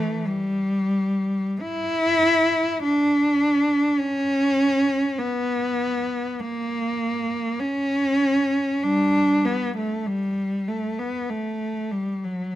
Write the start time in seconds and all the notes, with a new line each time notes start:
Already playing: E3 A3
0.26 G3
1.61 E4
2.83 D4
4.00 C#4
5.18 B3
6.40 A#3
7.59 C#4
8.83 G3 D4
9.45 B3
9.77 A3
10.07 G3
10.68 A3
10.99 B3
11.30 A3
11.91 G3
12.24 F#3